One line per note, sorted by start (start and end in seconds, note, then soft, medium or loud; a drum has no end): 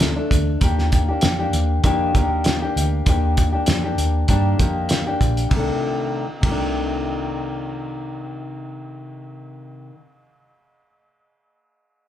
0.00 0.19 D2 medium
0.00 0.17 C3 medium
0.00 0.17 A3 medium
0.00 0.15 D4 medium
0.00 snare medium
0.16 0.61 A3 soft
0.16 0.61 D4 medium
0.31 0.55 D2 medium
0.31 kick medium
0.31 closed hi-hat medium
0.60 1.10 D#2 medium
0.60 1.08 D#3 medium
0.60 1.09 A#3 medium
0.60 1.09 D4 medium
0.60 1.07 G4 medium
0.60 kick medium
0.60 closed hi-hat medium
0.79 snare soft
0.92 kick medium
0.92 closed hi-hat medium
1.09 1.41 A#3 soft
1.09 1.39 D4 soft
1.09 1.38 G4 medium
1.21 1.47 F2 medium
1.21 snare loud
1.21 closed hi-hat medium
1.39 1.83 A#3 soft
1.39 1.84 D4 soft
1.39 1.84 G4 medium
1.53 1.78 D#2 medium
1.53 closed hi-hat medium
1.83 2.15 F2 medium
1.83 2.13 D#3 medium
1.83 2.14 A#3 medium
1.83 2.15 D4 medium
1.83 2.15 G4 medium
1.83 kick medium
1.83 closed hi-hat medium
2.14 2.64 D#2 medium
2.14 2.62 D#3 medium
2.14 2.62 A#3 medium
2.14 2.63 D4 medium
2.14 2.61 G4 medium
2.14 kick medium
2.14 closed hi-hat medium
2.44 snare medium
2.44 closed hi-hat medium
2.62 3.06 A#3 soft
2.62 3.07 D4 soft
2.62 3.06 G4 medium
2.76 3.00 D2 medium
2.76 closed hi-hat medium
3.05 3.55 D#2 medium
3.05 3.53 D#3 medium
3.05 3.54 A#3 medium
3.05 3.53 D4 medium
3.05 3.51 G4 medium
3.05 kick medium
3.05 closed hi-hat medium
3.37 kick medium
3.37 closed hi-hat medium
3.52 3.85 A#3 soft
3.52 3.84 D4 soft
3.52 3.83 G4 soft
3.66 3.92 F2 medium
3.66 snare loud
3.66 closed hi-hat medium
3.84 4.28 A#3 soft
3.84 4.29 D4 medium
3.84 4.28 G4 medium
3.98 4.23 D#2 medium
3.98 closed hi-hat medium
4.28 4.53 G2 medium
4.28 4.57 D#3 medium
4.28 4.59 A#3 medium
4.28 4.60 D4 medium
4.28 4.60 G4 medium
4.28 kick medium
4.28 closed hi-hat medium
4.58 5.08 F2 medium
4.58 5.06 D#3 medium
4.58 5.07 A#3 medium
4.58 5.07 D4 medium
4.58 5.05 G4 medium
4.58 kick medium
4.58 closed hi-hat medium
4.89 snare medium
4.89 closed hi-hat medium
5.06 5.53 A#3 soft
5.06 5.52 D4 soft
5.06 5.51 G4 medium
5.21 5.45 A#1 medium
5.21 kick medium
5.21 closed hi-hat medium
5.37 closed hi-hat soft
5.49 5.69 C2 medium
5.49 6.25 C3 medium
5.49 kick medium
5.49 ride medium
5.53 6.25 D#3 medium
5.53 6.25 A3 medium
5.59 6.25 D4 medium
6.41 9.42 C2 medium
6.41 9.91 C3 medium
6.41 kick medium
6.41 ride medium
6.45 9.95 D#3 medium
6.45 9.98 A3 medium
6.51 10.00 D4 medium